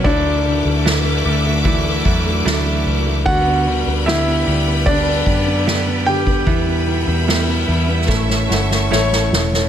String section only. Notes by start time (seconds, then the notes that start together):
0.05 F#4 E5 D6
3.25 B4 D5 B5
6.46 E5 B5
8.09 A4 C#6